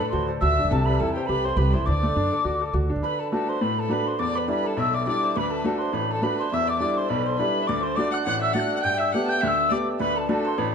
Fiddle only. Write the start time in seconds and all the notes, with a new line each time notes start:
0.00 B4
0.13 C5
0.41 E5
0.71 A4
0.86 B4
0.99 A4
1.15 G4
1.27 B4
1.44 C5
1.57 B4
1.70 C5 D5
1.87 D5
3.05 B4
3.19 A4
3.33 A4
3.48 C5
3.63 B4
3.79 A4
3.92 B4
4.08 C5
4.22 D5
4.38 B4
4.50 B4
4.67 A4
4.78 E5
4.94 D5
5.09 D5
5.38 B4
5.66 A4
5.81 C5
5.94 B4
6.10 A4
6.23 B4
6.51 E5
6.68 D5
6.79 D5
6.96 C5
7.09 B4
7.23 C5
7.37 B4
7.62 E5
7.67 D5
7.82 C5
7.96 D5
8.11 F#5
8.25 F#5
8.41 E5
8.54 F#5
8.76 F#5
8.82 G5
8.98 E5
9.12 F#5
9.26 G5 A5
9.41 E5
9.69 D5
9.99 B4
10.15 A4
10.28 A4
10.59 B4